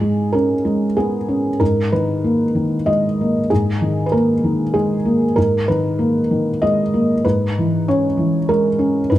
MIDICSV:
0, 0, Header, 1, 2, 480
1, 0, Start_track
1, 0, Tempo, 630252
1, 1222, Time_signature, 3, 2, 24, 8
1, 3143, Tempo, 622407
1, 7045, End_track
2, 0, Start_track
2, 0, Title_t, "Felt piano"
2, 0, Program_c, 0, 0
2, 0, Control_c, 0, 64, 127
2, 0, Note_on_c, 0, 44, 31
2, 0, Note_on_c, 0, 68, 43
2, 9, Note_on_c, 0, 56, 26
2, 248, Note_on_c, 0, 70, 46
2, 250, Note_off_c, 0, 68, 0
2, 261, Note_on_c, 0, 61, 26
2, 400, Note_off_c, 0, 56, 0
2, 494, Note_on_c, 0, 56, 26
2, 644, Note_off_c, 0, 61, 0
2, 733, Note_off_c, 0, 70, 0
2, 736, Note_on_c, 0, 68, 44
2, 743, Note_on_c, 0, 59, 26
2, 881, Note_off_c, 0, 56, 0
2, 978, Note_on_c, 0, 61, 29
2, 1126, Note_off_c, 0, 59, 0
2, 1184, Note_off_c, 0, 44, 0
2, 1216, Note_on_c, 0, 70, 47
2, 1219, Note_off_c, 0, 68, 0
2, 1220, Note_off_c, 0, 61, 0
2, 1220, Note_on_c, 0, 44, 32
2, 1237, Control_c, 0, 64, 0
2, 1360, Control_c, 0, 64, 127
2, 1460, Note_off_c, 0, 70, 0
2, 1466, Note_on_c, 0, 71, 47
2, 1467, Note_on_c, 0, 51, 26
2, 1708, Note_on_c, 0, 58, 30
2, 1851, Note_off_c, 0, 51, 0
2, 1942, Note_on_c, 0, 51, 28
2, 2091, Note_off_c, 0, 58, 0
2, 2178, Note_on_c, 0, 75, 55
2, 2186, Note_on_c, 0, 56, 27
2, 2187, Note_off_c, 0, 71, 0
2, 2328, Note_off_c, 0, 51, 0
2, 2444, Note_on_c, 0, 58, 32
2, 2569, Note_off_c, 0, 56, 0
2, 2633, Note_off_c, 0, 44, 0
2, 2661, Note_off_c, 0, 75, 0
2, 2667, Note_on_c, 0, 68, 49
2, 2674, Note_off_c, 0, 58, 0
2, 2680, Control_c, 0, 64, 0
2, 2680, Note_on_c, 0, 44, 36
2, 2805, Control_c, 0, 64, 127
2, 2907, Note_on_c, 0, 51, 28
2, 3091, Note_off_c, 0, 68, 0
2, 3094, Note_on_c, 0, 71, 37
2, 3137, Note_on_c, 0, 70, 49
2, 3144, Note_off_c, 0, 71, 0
2, 3148, Note_on_c, 0, 58, 32
2, 3288, Note_off_c, 0, 51, 0
2, 3384, Note_on_c, 0, 51, 29
2, 3529, Note_off_c, 0, 58, 0
2, 3613, Note_on_c, 0, 68, 50
2, 3620, Note_off_c, 0, 70, 0
2, 3620, Note_on_c, 0, 56, 30
2, 3766, Note_off_c, 0, 51, 0
2, 3857, Note_on_c, 0, 58, 32
2, 4003, Note_off_c, 0, 56, 0
2, 4077, Note_off_c, 0, 44, 0
2, 4093, Note_on_c, 0, 70, 51
2, 4095, Note_off_c, 0, 68, 0
2, 4098, Note_off_c, 0, 58, 0
2, 4104, Note_on_c, 0, 44, 38
2, 4112, Control_c, 0, 64, 0
2, 4246, Control_c, 0, 64, 127
2, 4336, Note_off_c, 0, 70, 0
2, 4341, Note_on_c, 0, 71, 52
2, 4352, Note_on_c, 0, 51, 29
2, 4578, Note_on_c, 0, 58, 33
2, 4730, Note_off_c, 0, 51, 0
2, 4826, Note_on_c, 0, 51, 30
2, 4963, Note_off_c, 0, 58, 0
2, 5060, Note_off_c, 0, 71, 0
2, 5063, Note_on_c, 0, 75, 59
2, 5072, Note_on_c, 0, 56, 33
2, 5207, Note_off_c, 0, 51, 0
2, 5310, Note_on_c, 0, 58, 34
2, 5450, Note_off_c, 0, 56, 0
2, 5512, Note_off_c, 0, 44, 0
2, 5543, Note_off_c, 0, 75, 0
2, 5547, Note_off_c, 0, 58, 0
2, 5548, Note_on_c, 0, 71, 54
2, 5554, Note_on_c, 0, 44, 40
2, 5555, Control_c, 0, 64, 0
2, 5704, Control_c, 0, 64, 127
2, 5810, Note_on_c, 0, 52, 29
2, 6026, Note_off_c, 0, 71, 0
2, 6040, Note_on_c, 0, 73, 54
2, 6041, Note_on_c, 0, 61, 32
2, 6179, Note_off_c, 0, 52, 0
2, 6262, Note_on_c, 0, 52, 31
2, 6412, Note_off_c, 0, 61, 0
2, 6506, Note_on_c, 0, 70, 55
2, 6507, Note_off_c, 0, 73, 0
2, 6508, Note_on_c, 0, 56, 29
2, 6644, Note_off_c, 0, 52, 0
2, 6738, Note_on_c, 0, 61, 33
2, 6890, Note_off_c, 0, 56, 0
2, 6958, Note_off_c, 0, 44, 0
2, 6976, Note_on_c, 0, 71, 46
2, 6982, Note_off_c, 0, 61, 0
2, 6986, Note_off_c, 0, 70, 0
2, 6991, Note_on_c, 0, 44, 37
2, 6996, Control_c, 0, 64, 0
2, 7045, Note_off_c, 0, 44, 0
2, 7045, Note_off_c, 0, 71, 0
2, 7045, End_track
0, 0, End_of_file